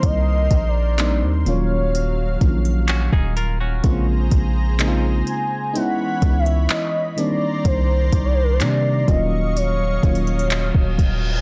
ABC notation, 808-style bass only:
X:1
M:4/4
L:1/16
Q:1/4=63
K:Ebdor
V:1 name="808-style bass" clef=bass
C,,2 B,,,3 E,, E,,,4 B,,,3 E,,,3 | B,,,2 B,,,4 z4 D,,2 z4 | C,,2 C,,2 C,2 E,,,4 E,,,3 E,,,3 |]